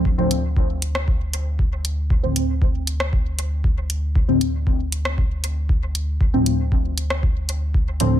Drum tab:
HH |--x---x---x---x-|--x---x---x---x-|--x---x---x---x-|--x---x---x---x-|
SD |-------r--------|-------r--------|-------r--------|-------r--------|
BD |o---o---o---o---|o---o---o---o---|o---o---o---o---|o---o---o---o---|